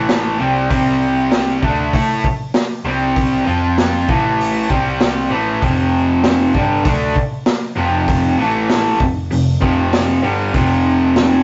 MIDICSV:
0, 0, Header, 1, 4, 480
1, 0, Start_track
1, 0, Tempo, 614754
1, 557, Time_signature, 4, 2, 24, 8
1, 8925, End_track
2, 0, Start_track
2, 0, Title_t, "Overdriven electric guitar"
2, 0, Program_c, 0, 29
2, 0, Note_on_c, 0, 45, 96
2, 0, Note_on_c, 0, 52, 98
2, 0, Note_on_c, 0, 57, 106
2, 300, Note_off_c, 0, 45, 0
2, 303, Note_on_c, 0, 48, 95
2, 306, Note_off_c, 0, 52, 0
2, 309, Note_on_c, 0, 55, 96
2, 313, Note_off_c, 0, 57, 0
2, 316, Note_on_c, 0, 60, 97
2, 535, Note_off_c, 0, 48, 0
2, 541, Note_off_c, 0, 55, 0
2, 545, Note_on_c, 0, 48, 87
2, 549, Note_off_c, 0, 60, 0
2, 550, Note_on_c, 0, 55, 100
2, 558, Note_on_c, 0, 60, 104
2, 1261, Note_off_c, 0, 48, 0
2, 1264, Note_off_c, 0, 55, 0
2, 1267, Note_on_c, 0, 50, 97
2, 1268, Note_off_c, 0, 60, 0
2, 1275, Note_on_c, 0, 57, 101
2, 1282, Note_on_c, 0, 62, 89
2, 1503, Note_off_c, 0, 50, 0
2, 1507, Note_off_c, 0, 57, 0
2, 1510, Note_off_c, 0, 62, 0
2, 1515, Note_on_c, 0, 57, 96
2, 1520, Note_on_c, 0, 64, 93
2, 1523, Note_on_c, 0, 69, 106
2, 1747, Note_off_c, 0, 57, 0
2, 1749, Note_off_c, 0, 64, 0
2, 1751, Note_off_c, 0, 69, 0
2, 2223, Note_on_c, 0, 48, 92
2, 2233, Note_on_c, 0, 55, 89
2, 2239, Note_on_c, 0, 60, 97
2, 2697, Note_off_c, 0, 60, 0
2, 2700, Note_off_c, 0, 48, 0
2, 2704, Note_off_c, 0, 55, 0
2, 2704, Note_on_c, 0, 53, 85
2, 2707, Note_on_c, 0, 60, 90
2, 2712, Note_on_c, 0, 65, 96
2, 3177, Note_off_c, 0, 53, 0
2, 3181, Note_off_c, 0, 60, 0
2, 3181, Note_on_c, 0, 45, 89
2, 3184, Note_off_c, 0, 65, 0
2, 3188, Note_on_c, 0, 52, 87
2, 3192, Note_on_c, 0, 57, 91
2, 3658, Note_off_c, 0, 45, 0
2, 3661, Note_off_c, 0, 52, 0
2, 3663, Note_off_c, 0, 57, 0
2, 3667, Note_on_c, 0, 48, 86
2, 3675, Note_on_c, 0, 55, 94
2, 3678, Note_on_c, 0, 60, 96
2, 4138, Note_off_c, 0, 48, 0
2, 4141, Note_off_c, 0, 55, 0
2, 4141, Note_on_c, 0, 45, 82
2, 4144, Note_on_c, 0, 52, 100
2, 4146, Note_off_c, 0, 60, 0
2, 4153, Note_on_c, 0, 57, 97
2, 4378, Note_off_c, 0, 45, 0
2, 4379, Note_off_c, 0, 52, 0
2, 4383, Note_on_c, 0, 41, 81
2, 4384, Note_off_c, 0, 57, 0
2, 4393, Note_on_c, 0, 48, 95
2, 4398, Note_on_c, 0, 53, 98
2, 5099, Note_off_c, 0, 41, 0
2, 5104, Note_off_c, 0, 48, 0
2, 5105, Note_on_c, 0, 43, 95
2, 5107, Note_off_c, 0, 53, 0
2, 5110, Note_on_c, 0, 50, 85
2, 5118, Note_on_c, 0, 55, 103
2, 5331, Note_off_c, 0, 50, 0
2, 5340, Note_off_c, 0, 43, 0
2, 5340, Note_on_c, 0, 50, 87
2, 5346, Note_off_c, 0, 55, 0
2, 5349, Note_on_c, 0, 57, 89
2, 5349, Note_on_c, 0, 62, 106
2, 5578, Note_off_c, 0, 50, 0
2, 5582, Note_off_c, 0, 57, 0
2, 5582, Note_off_c, 0, 62, 0
2, 6057, Note_on_c, 0, 41, 94
2, 6064, Note_on_c, 0, 48, 89
2, 6069, Note_on_c, 0, 53, 91
2, 6537, Note_off_c, 0, 41, 0
2, 6540, Note_off_c, 0, 48, 0
2, 6543, Note_off_c, 0, 53, 0
2, 6545, Note_on_c, 0, 45, 87
2, 6553, Note_on_c, 0, 52, 103
2, 6556, Note_on_c, 0, 57, 107
2, 7021, Note_off_c, 0, 45, 0
2, 7025, Note_off_c, 0, 52, 0
2, 7027, Note_off_c, 0, 57, 0
2, 7031, Note_on_c, 0, 41, 64
2, 7032, Note_on_c, 0, 48, 73
2, 7223, Note_off_c, 0, 41, 0
2, 7224, Note_off_c, 0, 48, 0
2, 7269, Note_on_c, 0, 41, 71
2, 7271, Note_on_c, 0, 48, 72
2, 7462, Note_off_c, 0, 41, 0
2, 7464, Note_off_c, 0, 48, 0
2, 7500, Note_on_c, 0, 41, 83
2, 7506, Note_on_c, 0, 48, 94
2, 7511, Note_on_c, 0, 53, 96
2, 7980, Note_off_c, 0, 41, 0
2, 7983, Note_off_c, 0, 48, 0
2, 7985, Note_off_c, 0, 53, 0
2, 7985, Note_on_c, 0, 43, 94
2, 7986, Note_on_c, 0, 50, 93
2, 7990, Note_on_c, 0, 55, 93
2, 8220, Note_off_c, 0, 43, 0
2, 8223, Note_off_c, 0, 50, 0
2, 8223, Note_on_c, 0, 41, 94
2, 8225, Note_off_c, 0, 55, 0
2, 8229, Note_on_c, 0, 48, 105
2, 8235, Note_on_c, 0, 53, 102
2, 8925, Note_off_c, 0, 41, 0
2, 8925, Note_off_c, 0, 48, 0
2, 8925, Note_off_c, 0, 53, 0
2, 8925, End_track
3, 0, Start_track
3, 0, Title_t, "Picked electric bass"
3, 0, Program_c, 1, 34
3, 0, Note_on_c, 1, 33, 99
3, 284, Note_off_c, 1, 33, 0
3, 316, Note_on_c, 1, 36, 98
3, 539, Note_off_c, 1, 36, 0
3, 552, Note_on_c, 1, 36, 101
3, 1241, Note_off_c, 1, 36, 0
3, 1273, Note_on_c, 1, 38, 88
3, 1496, Note_off_c, 1, 38, 0
3, 1514, Note_on_c, 1, 45, 85
3, 1736, Note_off_c, 1, 45, 0
3, 2219, Note_on_c, 1, 36, 91
3, 2673, Note_off_c, 1, 36, 0
3, 2711, Note_on_c, 1, 41, 88
3, 3159, Note_off_c, 1, 41, 0
3, 3190, Note_on_c, 1, 33, 86
3, 3638, Note_off_c, 1, 33, 0
3, 3670, Note_on_c, 1, 36, 99
3, 4118, Note_off_c, 1, 36, 0
3, 4145, Note_on_c, 1, 33, 94
3, 4370, Note_off_c, 1, 33, 0
3, 4394, Note_on_c, 1, 29, 95
3, 5080, Note_off_c, 1, 29, 0
3, 5114, Note_on_c, 1, 31, 89
3, 5335, Note_off_c, 1, 31, 0
3, 5352, Note_on_c, 1, 38, 90
3, 5574, Note_off_c, 1, 38, 0
3, 6067, Note_on_c, 1, 29, 101
3, 6517, Note_off_c, 1, 29, 0
3, 6546, Note_on_c, 1, 33, 93
3, 6998, Note_off_c, 1, 33, 0
3, 7028, Note_on_c, 1, 29, 79
3, 7253, Note_off_c, 1, 29, 0
3, 7273, Note_on_c, 1, 29, 79
3, 7496, Note_off_c, 1, 29, 0
3, 7511, Note_on_c, 1, 29, 97
3, 7961, Note_off_c, 1, 29, 0
3, 8000, Note_on_c, 1, 31, 97
3, 8220, Note_off_c, 1, 31, 0
3, 8235, Note_on_c, 1, 29, 96
3, 8925, Note_off_c, 1, 29, 0
3, 8925, End_track
4, 0, Start_track
4, 0, Title_t, "Drums"
4, 70, Note_on_c, 9, 38, 109
4, 70, Note_on_c, 9, 46, 51
4, 149, Note_off_c, 9, 38, 0
4, 149, Note_off_c, 9, 46, 0
4, 550, Note_on_c, 9, 46, 50
4, 551, Note_on_c, 9, 36, 94
4, 628, Note_off_c, 9, 46, 0
4, 629, Note_off_c, 9, 36, 0
4, 1028, Note_on_c, 9, 38, 106
4, 1028, Note_on_c, 9, 46, 57
4, 1106, Note_off_c, 9, 38, 0
4, 1106, Note_off_c, 9, 46, 0
4, 1270, Note_on_c, 9, 36, 83
4, 1348, Note_off_c, 9, 36, 0
4, 1510, Note_on_c, 9, 36, 106
4, 1511, Note_on_c, 9, 46, 60
4, 1588, Note_off_c, 9, 36, 0
4, 1589, Note_off_c, 9, 46, 0
4, 1750, Note_on_c, 9, 36, 92
4, 1828, Note_off_c, 9, 36, 0
4, 1985, Note_on_c, 9, 38, 117
4, 1985, Note_on_c, 9, 46, 61
4, 2063, Note_off_c, 9, 38, 0
4, 2063, Note_off_c, 9, 46, 0
4, 2470, Note_on_c, 9, 36, 99
4, 2470, Note_on_c, 9, 46, 52
4, 2548, Note_off_c, 9, 36, 0
4, 2548, Note_off_c, 9, 46, 0
4, 2950, Note_on_c, 9, 38, 107
4, 2950, Note_on_c, 9, 46, 59
4, 3028, Note_off_c, 9, 38, 0
4, 3028, Note_off_c, 9, 46, 0
4, 3191, Note_on_c, 9, 36, 108
4, 3269, Note_off_c, 9, 36, 0
4, 3439, Note_on_c, 9, 46, 60
4, 3517, Note_off_c, 9, 46, 0
4, 3671, Note_on_c, 9, 36, 84
4, 3749, Note_off_c, 9, 36, 0
4, 3909, Note_on_c, 9, 38, 118
4, 3909, Note_on_c, 9, 46, 54
4, 3987, Note_off_c, 9, 38, 0
4, 3987, Note_off_c, 9, 46, 0
4, 4391, Note_on_c, 9, 36, 100
4, 4392, Note_on_c, 9, 46, 46
4, 4469, Note_off_c, 9, 36, 0
4, 4470, Note_off_c, 9, 46, 0
4, 4870, Note_on_c, 9, 38, 108
4, 4870, Note_on_c, 9, 46, 53
4, 4948, Note_off_c, 9, 38, 0
4, 4948, Note_off_c, 9, 46, 0
4, 5111, Note_on_c, 9, 36, 74
4, 5189, Note_off_c, 9, 36, 0
4, 5350, Note_on_c, 9, 36, 118
4, 5350, Note_on_c, 9, 46, 57
4, 5428, Note_off_c, 9, 36, 0
4, 5428, Note_off_c, 9, 46, 0
4, 5590, Note_on_c, 9, 36, 87
4, 5668, Note_off_c, 9, 36, 0
4, 5825, Note_on_c, 9, 38, 113
4, 5825, Note_on_c, 9, 46, 59
4, 5904, Note_off_c, 9, 38, 0
4, 5904, Note_off_c, 9, 46, 0
4, 6309, Note_on_c, 9, 36, 96
4, 6312, Note_on_c, 9, 46, 54
4, 6387, Note_off_c, 9, 36, 0
4, 6390, Note_off_c, 9, 46, 0
4, 6790, Note_on_c, 9, 38, 121
4, 6790, Note_on_c, 9, 46, 59
4, 6868, Note_off_c, 9, 38, 0
4, 6868, Note_off_c, 9, 46, 0
4, 7029, Note_on_c, 9, 36, 103
4, 7107, Note_off_c, 9, 36, 0
4, 7273, Note_on_c, 9, 46, 58
4, 7351, Note_off_c, 9, 46, 0
4, 7511, Note_on_c, 9, 36, 87
4, 7589, Note_off_c, 9, 36, 0
4, 7754, Note_on_c, 9, 38, 109
4, 7754, Note_on_c, 9, 46, 63
4, 7832, Note_off_c, 9, 38, 0
4, 7832, Note_off_c, 9, 46, 0
4, 8232, Note_on_c, 9, 36, 98
4, 8233, Note_on_c, 9, 46, 51
4, 8310, Note_off_c, 9, 36, 0
4, 8311, Note_off_c, 9, 46, 0
4, 8715, Note_on_c, 9, 38, 116
4, 8715, Note_on_c, 9, 46, 54
4, 8793, Note_off_c, 9, 38, 0
4, 8793, Note_off_c, 9, 46, 0
4, 8925, End_track
0, 0, End_of_file